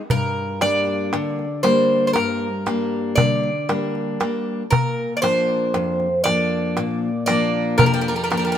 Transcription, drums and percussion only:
0.10 darbuka dum medium
0.61 darbuka tek medium
0.87 darbuka tek soft
1.13 darbuka tek medium
1.39 darbuka tek soft
1.64 darbuka tek medium
2.16 darbuka tek medium
2.67 darbuka tek medium
3.18 darbuka dum medium
3.44 darbuka tek soft
3.69 darbuka tek medium
3.95 darbuka tek soft
4.21 darbuka tek medium
4.72 darbuka dum medium
5.24 darbuka tek medium
5.49 darbuka tek soft
5.74 darbuka tek medium
6.00 darbuka tek soft
6.26 darbuka tek medium
6.77 darbuka tek medium
7.28 darbuka tek medium
7.79 darbuka dum loud
8.05 darbuka tek soft
8.32 darbuka tek medium

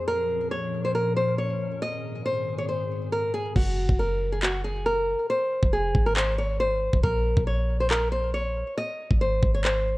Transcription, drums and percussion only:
3.56 kick loud
3.56 crash medium
3.89 kick loud
4.43 clap loud
5.63 kick loud
5.95 kick medium
6.17 clap loud
6.93 kick loud
7.04 kick loud
7.37 kick loud
7.91 clap loud
9.11 kick loud
9.43 kick medium
9.64 clap loud

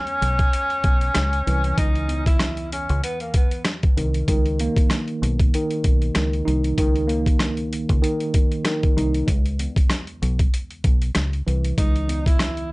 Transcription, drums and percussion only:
0.07 closed hi-hat soft
0.22 closed hi-hat medium
0.39 kick loud
0.39 closed hi-hat medium
0.53 closed hi-hat medium
0.70 closed hi-hat soft
0.84 kick medium
0.84 closed hi-hat medium
1.01 closed hi-hat soft
1.14 cross-stick medium
1.14 snare loud
1.14 closed hi-hat loud
1.33 closed hi-hat soft
1.47 closed hi-hat medium
1.64 closed hi-hat medium
1.78 kick loud
1.78 closed hi-hat loud
1.95 closed hi-hat soft
2.09 closed hi-hat medium
2.26 kick medium
2.26 closed hi-hat medium
2.40 cross-stick loud
2.40 snare loud
2.40 closed hi-hat loud
2.57 closed hi-hat soft
2.72 closed hi-hat medium
2.89 closed hi-hat medium
3.04 closed hi-hat medium
3.20 closed hi-hat soft
3.34 kick medium
3.34 closed hi-hat medium
3.51 closed hi-hat soft
3.65 cross-stick medium
3.65 snare loud
3.65 closed hi-hat loud
3.83 kick medium
3.83 closed hi-hat soft
3.98 closed hi-hat medium
4.14 closed hi-hat medium
4.28 kick loud
4.28 closed hi-hat loud
4.46 closed hi-hat soft
4.59 closed hi-hat medium
4.76 kick medium
4.76 closed hi-hat medium
4.90 cross-stick loud
4.90 snare loud
4.90 closed hi-hat loud
5.08 closed hi-hat soft
5.23 closed hi-hat medium
5.40 kick loud
5.40 closed hi-hat medium
5.54 closed hi-hat medium
5.71 closed hi-hat soft
5.84 kick medium
5.84 closed hi-hat medium
6.02 closed hi-hat soft
6.15 cross-stick medium
6.15 snare loud
6.15 closed hi-hat loud
6.33 closed hi-hat soft
6.48 closed hi-hat medium
6.64 closed hi-hat medium
6.78 kick loud
6.78 closed hi-hat loud
6.96 closed hi-hat soft
7.09 closed hi-hat medium
7.26 kick medium
7.26 closed hi-hat medium
7.39 cross-stick loud
7.39 snare loud
7.39 closed hi-hat loud
7.57 closed hi-hat soft
7.73 closed hi-hat medium
7.89 kick loud
7.89 closed hi-hat medium
8.04 closed hi-hat medium
8.20 closed hi-hat soft
8.34 kick medium
8.34 closed hi-hat medium
8.52 closed hi-hat soft
8.65 cross-stick medium
8.65 snare loud
8.65 closed hi-hat loud
8.83 kick medium
8.83 closed hi-hat soft
8.98 closed hi-hat medium
9.14 closed hi-hat soft
9.28 kick loud
9.28 closed hi-hat loud
9.46 closed hi-hat soft
9.59 closed hi-hat medium
9.76 kick medium
9.76 closed hi-hat medium
9.90 cross-stick loud
9.90 snare loud
9.90 closed hi-hat loud
10.07 closed hi-hat soft
10.23 closed hi-hat medium
10.39 kick loud
10.39 closed hi-hat medium
10.54 closed hi-hat medium
10.71 closed hi-hat soft
10.84 kick medium
10.84 closed hi-hat medium
11.02 closed hi-hat soft
11.15 cross-stick medium
11.15 snare loud
11.15 closed hi-hat loud
11.33 closed hi-hat soft
11.48 closed hi-hat medium
11.65 closed hi-hat medium
11.78 kick loud
11.78 closed hi-hat loud
11.96 closed hi-hat soft
12.09 closed hi-hat medium
12.26 kick medium
12.26 closed hi-hat medium
12.39 cross-stick loud
12.39 snare loud
12.39 closed hi-hat loud
12.57 closed hi-hat soft

